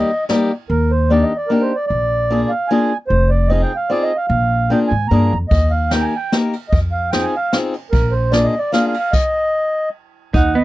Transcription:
Already playing: D#4 G4 D#5
0.29 G3 A#3 D#4 G4, snare, ride
0.70 D#2 A#4
0.91 C5
1.10 A#3 D4 D#4 G4 D5
1.23 D#5
1.37 D5
1.47 A#3 D4 D#4 A#4
1.52 G4
1.61 C5
1.75 D5
1.87 A#1 D5
2.30 A#3 D4 F4 G#4
2.49 F5
2.68 A#3 D4 G#5
2.72 F4 G#4
3.08 F1 C5
3.29 D5
3.48 C4 D#4 F4 G#4 D#5
3.62 G5
3.76 F5
3.90 C4 D#4 F4 G#4 D5
4.03 D#5
4.17 F5
4.28 A#1 F5
4.70 A#3 D4 F4 G#4 G5
4.88 G#2 G#5
5.08 G2 A#3 D4 F4 A#5
5.13 G#4
5.33 F2
5.49 D#2 D#5, kick, ride
5.71 F5
5.91 A#3 D#4 G4 A#4 G5, snare, ride
6.02 G#5
6.16 G5
6.32 A#3 D#4 G4 A#4, snare, ride
6.53 ride
6.69 F2 D#5, kick, ride
6.92 F5
7.11 C4 D#4 F4 G#4 G5, snare, ride
7.23 G#5
7.36 F5
7.53 C4 D#4 F4 G#4, snare, ride
7.74 ride
7.91 A#1 A#4, kick, ride
8.11 C5
8.32 A#3 D4 F4 G#4 D5, snare, ride
8.44 D#5
8.59 D5
8.72 A#3 D4 F4 G#4 F5, snare, ride
8.87 F5
8.94 ride
8.99 F5
9.12 D#5, kick, crash
10.34 D#2 D#4 F#5, kick, closed hi-hat
10.55 B3 D#5

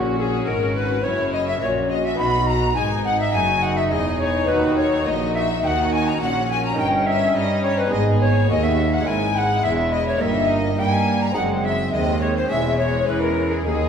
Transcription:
Already playing: A#1 A#2 C#4 E4 F#4
0.18 G#4 A4
0.46 G#1 G#2 A#4
0.75 B4
1.03 F#1 F#2 C#4 E4 C#5
1.33 D#5
1.48 E5
1.61 A#1 A#2 C#4 F#4 C#5
1.89 D#5
2.05 E5
2.15 B2 B3 D#4 F#4 B5
2.19 B1 B2 B5
2.47 A#5
2.75 G#1 G#2 D#4 G#5
3.04 F#5
3.19 E5
3.33 F#1 F#2 F#4 G#5
3.62 F#5
3.76 E5
3.90 E1 E2 G#4 D#5
4.19 C#5
4.45 D#2 B3 D#4 F#4 B4
4.49 D#2 F#4 B4
4.76 C#5
5.06 A#1 A#2 F#4 D#5
5.34 E5
5.63 D#2 D#3 F#5 G5
5.92 G#5
6.08 A#5
6.21 A#1 A#2 C#4 F#5
6.50 G#5
6.65 A#5
6.73 C#4 D#4 A#4
6.77 G1 G2 D#4 G5
7.06 E5
7.34 G2 G3 D#4 D#5
7.63 C#5
7.78 B4
7.86 G#3 B3 D#4
7.91 G#1 G#2 B3 G#4 D#5
8.21 C#5
8.49 D#2 A#3 F#4 D#5
8.63 E5
8.93 F#5
9.00 G#3 C#4 E4
9.05 G#1 G#2 G#3 E4 A#4 G#5
9.34 F#5 G5
9.63 E1 E2 E5
9.92 D#5
10.07 C#5
10.16 A#3 D#4 A#4
10.21 G1 G2 A#3 D#4 E5
10.49 D#5
10.77 G2 G3 A#3 D#4 G5
10.91 G#5
11.21 A#5
11.32 F#2 C4 D#4 G#4 F#5
11.36 F#1 F#2 G#3 C4 F#5
11.64 E5
11.92 D#2 G#3 C4 D#5
12.21 C#5
12.35 C5
12.46 G#3 C#4 G#4 E5
12.50 E1 E2 G#3 C#4
12.78 C#5
13.07 E2 E3 B4
13.22 A#4
13.52 G#4
13.62 A#3 D#4 G#4
13.66 D#2 A#3 D#4 G#4

